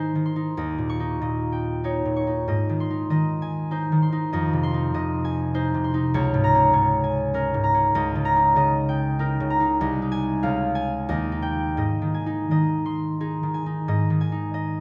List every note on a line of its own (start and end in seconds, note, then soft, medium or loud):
0.00 0.60 G#2 soft
0.00 0.14 D#3 soft
0.00 0.35 D#4 soft
0.00 0.60 C5 soft
0.00 0.56 D#5 soft
0.00 0.61 G#5 soft
0.00 0.24 C6 medium
0.15 0.60 D#3 soft
0.26 0.60 C6 soft
0.36 0.99 D#4 soft
0.57 2.50 D#2 medium
0.57 1.21 D#5 soft
0.78 1.20 A#2 soft
0.90 2.15 C#6 medium
1.00 1.83 D#4 soft
1.21 2.04 A#2 soft
1.21 2.47 D#5 soft
1.52 2.50 G5 soft
1.84 2.26 D#4 soft
1.84 2.50 C#5 soft
2.05 2.50 A#2 soft
2.16 2.51 C#6 soft
2.27 2.89 D#4 soft
2.48 4.36 G#2 soft
2.48 3.09 D#5 soft
2.69 3.10 D#3 soft
2.80 4.01 C6 medium
2.91 3.70 D#4 soft
3.10 3.91 D#3 soft
3.10 4.31 D#5 soft
3.42 5.23 G#5 soft
3.71 4.11 D#4 soft
3.71 5.53 C5 soft
3.92 4.35 D#3 soft
4.02 4.62 C6 soft
4.12 4.73 D#4 soft
4.33 6.16 F2 medium
4.33 4.93 D#5 medium
4.53 4.93 C3 soft
4.63 5.83 C6 medium
4.74 5.53 D#4 soft
4.94 5.73 C3 soft
4.94 6.17 D#5 medium
5.25 7.03 G#5 medium
5.54 5.93 D#4 soft
5.54 6.17 C5 medium
5.74 6.17 C3 soft
5.84 6.16 C6 medium
5.94 6.16 D#4 soft
6.14 7.94 C#2 medium
6.14 6.72 C#5 medium
6.34 6.72 G#2 soft
6.44 7.62 A#5 medium
6.55 7.33 C#4 soft
6.73 7.53 G#2 soft
6.73 9.82 C#5 medium
7.04 7.97 G#5 medium
7.34 7.73 C#4 medium
7.34 9.19 A#4 medium
7.54 7.97 G#2 soft
7.64 8.24 A#5 medium
7.74 9.82 C#4 soft
7.95 9.83 C#2 medium
7.95 8.55 D#5 medium
8.16 8.55 C#3 soft
8.25 9.49 A#5 medium
8.36 9.18 D#4 soft
8.56 9.39 C#3 medium
8.56 9.80 D#5 medium
8.89 9.83 G5 medium
9.19 9.59 D#4 medium
9.19 9.83 A#4 medium
9.40 9.83 C#3 soft
9.50 9.83 A#5 medium
9.60 10.01 D#4 soft
9.81 10.46 C2 medium
9.81 10.46 D#5 medium
10.02 10.46 D#4 soft
10.12 10.74 G#5 medium
10.43 11.12 C#2 medium
10.43 11.12 F5 medium
10.75 11.11 G#5 medium
11.09 11.82 D#2 medium
11.09 11.76 D#5 soft
11.32 12.25 D#4 soft
11.42 11.82 G5 medium
11.77 13.87 G#2 soft
11.77 12.50 D#5 soft
12.02 12.50 D#3 soft
12.14 13.53 G#5 soft
12.26 13.20 D#4 soft
12.51 13.42 D#3 soft
12.51 13.87 D#5 soft
12.86 14.80 C6 medium
13.20 13.65 D#4 soft
13.20 14.80 G#4 soft
13.43 13.91 D#3 soft
13.54 14.20 G#5 soft
13.66 14.31 D#4 soft
13.88 14.80 G#2 medium
13.88 14.53 D#5 soft
14.10 14.80 D#3 soft
14.21 14.80 G#5 soft
14.32 14.80 D#4 soft
14.54 14.80 D#5 soft